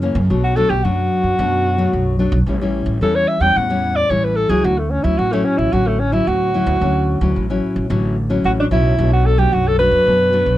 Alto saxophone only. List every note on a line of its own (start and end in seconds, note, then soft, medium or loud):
0.44 0.58 F#4 medium
0.56 0.71 A4 loud
0.70 0.85 G4 medium
0.84 2.47 F#4 medium
3.02 3.17 A4 medium
3.15 3.29 C#5 medium
3.28 3.43 E5 loud
3.41 3.58 G5 loud
3.57 3.98 F#5 medium
3.96 4.12 D5 medium
4.10 4.25 C#5 medium
4.24 4.38 B4 medium
4.36 4.51 A4 medium
4.49 4.66 G#4 medium
4.65 4.80 F#4 medium
4.78 4.92 A3 medium
4.90 5.04 C#4 medium
5.03 5.20 E4 medium
5.18 5.34 F#4 medium
5.32 5.46 A3 medium
5.45 5.59 C#4 medium
5.57 5.74 E4 medium
5.72 5.89 F#4 medium
5.87 6.01 A3 medium
5.99 6.14 C#4 medium
6.13 6.29 E4 medium
6.28 7.36 F#4 medium
8.45 8.51 F#4 medium
8.60 8.66 D4 medium
8.72 9.10 E4 medium
9.13 9.27 F#4 medium
9.26 9.40 A4 medium
9.38 9.54 G4 medium
9.53 9.69 F#4 medium
9.67 9.78 A4 loud
9.79 10.58 B4 loud